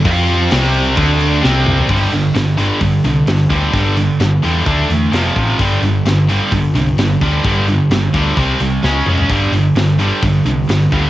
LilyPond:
<<
  \new Staff \with { instrumentName = "Analog synth pad" } { \time 4/4 \key c \dorian \tempo 4 = 130 << { g'4 d''2. | \key c \mixolydian r1 | r1 | r1 |
r1 | r1 | } \\ { <f c'>4 c'4 <d' a'>4 <c' g'>4 | r1 | r1 | r1 |
r1 | r1 | } >> }
  \new Staff \with { instrumentName = "Distorted electric guitar" } { \clef bass \time 4/4 \key c \dorian <f c' f'>4 <c g c'>4 <d a d'>4 <c g c'>4 | \key c \mixolydian <g, d g>8 <g, d>8 <g, d>8 <g, d g>8 <g, d>8 <g, d>8 <g, d>8 <g, d g>8 | <g, d g>8 <g, d>8 <g, d>8 <g, d g>8 <d a d'>8 <d a>8 <f, c f>8 <f, c f>8 | <g, d g>8 <g, d>8 <g, d>8 <g, d g>8 <g, d>8 <g, d>8 <g, d>8 <g, d g>8 |
<g, d g>8 <g, d>8 <g, d>8 <g, d g>8 <c g c'>8 <c g>8 <cis gis cis'>8 <cis gis cis'>8 | <g, d g>8 <g, d>8 <g, d>8 <g, d g>8 <g, d>8 <g, d>8 <g, d>8 <g, d g>8 | }
  \new Staff \with { instrumentName = "Distorted electric guitar" } { \clef bass \time 4/4 \key c \dorian <f c' f'>4 <c g c'>4 <d a d'>4 <c g c'>4 | \key c \mixolydian <g, d g>8 <g, d>8 <g, d>8 <g, d g>8 <g, d>8 <g, d>8 <g, d>8 <g, d g>8 | <g, d g>8 <g, d>8 <g, d>8 <g, d g>8 <d a d'>8 <d a>8 <f, c f>8 <f, c f>8 | <g, d g>8 <g, d>8 <g, d>8 <g, d g>8 <g, d>8 <g, d>8 <g, d>8 <g, d g>8 |
<g, d g>8 <g, d>8 <g, d>8 <g, d g>8 <c g c'>8 <c g>8 <cis gis cis'>8 <cis gis cis'>8 | <g, d g>8 <g, d>8 <g, d>8 <g, d g>8 <g, d>8 <g, d>8 <g, d>8 <g, d g>8 | }
  \new Staff \with { instrumentName = "Picked electric bass" } { \clef bass \time 4/4 \key c \dorian f,4 c,4 d,4 c,4 | \key c \mixolydian g,,8 g,,8 g,,4 g,,8 c,8 g,,8 d,8 | g,,4 g,,8 e,8 d,8 e,8 f,,8 a,,8 | g,,8 g,,8 g,,4 g,,8 c,8 g,,8 d,8 |
g,,4 g,,8 d,8 c,8 c,8 cis,8 f,,8 | g,,8 g,,8 g,,4 g,,8 c,8 g,,8 d,8 | }
  \new DrumStaff \with { instrumentName = "Drums" } \drummode { \time 4/4 <cymc bd>8 cymc8 <cymc sn>8 cymc8 <cymc bd>8 cymc8 sn8 toml16 tomfh16 | <cymc bd>8 hho8 <hho sn>8 hho8 <hho bd>8 hho8 <hho sn>8 <hho bd>8 | <hho bd>8 hho8 <hho sn>8 hho8 <hho bd>8 hho8 <hho sn>8 <hho bd>8 | <hho bd>8 hho8 <hho sn>8 hho8 <hho bd>8 hho8 <hho sn>8 <hho bd>8 |
<hho bd>8 hho8 <hho sn>8 <hho bd>8 <hho bd>8 hho8 sn8 toml16 tomfh16 | <hho bd>8 hho8 <hho sn>8 hho8 <hho bd>8 hho8 <hho sn>8 <hho bd>8 | }
>>